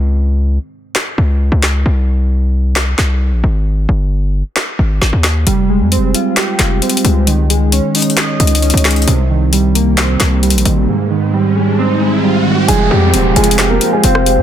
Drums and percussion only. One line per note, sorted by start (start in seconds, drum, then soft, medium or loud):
0.95 snare loud
0.95 clap loud
1.63 snare medium
1.63 clap medium
2.76 snare loud
2.76 clap loud
2.99 snare medium
2.99 clap medium
4.56 snare loud
4.56 clap loud
5.02 snare medium
5.24 snare medium
5.24 clap medium
5.47 closed hi-hat medium
5.92 closed hi-hat medium
6.15 closed hi-hat medium
6.37 snare loud
6.37 clap loud
6.37 closed hi-hat medium
6.59 snare medium
6.59 clap medium
6.59 closed hi-hat medium
6.82 closed hi-hat soft
6.90 closed hi-hat medium
6.97 closed hi-hat medium
7.05 closed hi-hat medium
7.27 closed hi-hat medium
7.50 closed hi-hat medium
7.72 closed hi-hat medium
7.95 closed hi-hat medium
7.95 open hi-hat medium
8.02 closed hi-hat medium
8.10 closed hi-hat medium
8.17 snare loud
8.17 clap loud
8.17 closed hi-hat medium
8.40 closed hi-hat soft
8.47 closed hi-hat medium
8.55 closed hi-hat medium
8.62 closed hi-hat soft
8.70 closed hi-hat medium
8.77 closed hi-hat medium
8.85 snare medium
8.85 clap medium
8.85 closed hi-hat medium
8.85 open hi-hat soft
8.91 closed hi-hat medium
8.96 closed hi-hat soft
9.02 closed hi-hat soft
9.08 closed hi-hat medium
9.53 closed hi-hat medium
9.75 closed hi-hat medium
9.98 snare loud
9.98 clap loud
9.98 closed hi-hat medium
10.20 snare medium
10.20 clap medium
10.20 closed hi-hat medium
10.43 closed hi-hat soft
10.50 closed hi-hat medium
10.58 closed hi-hat medium
10.65 closed hi-hat medium
12.68 closed hi-hat medium
13.14 closed hi-hat medium
13.36 closed hi-hat soft
13.44 closed hi-hat medium
13.51 closed hi-hat medium
13.59 snare loud
13.59 clap loud
13.59 closed hi-hat medium
13.81 closed hi-hat medium
14.04 closed hi-hat medium
14.15 cross-stick medium
14.26 closed hi-hat medium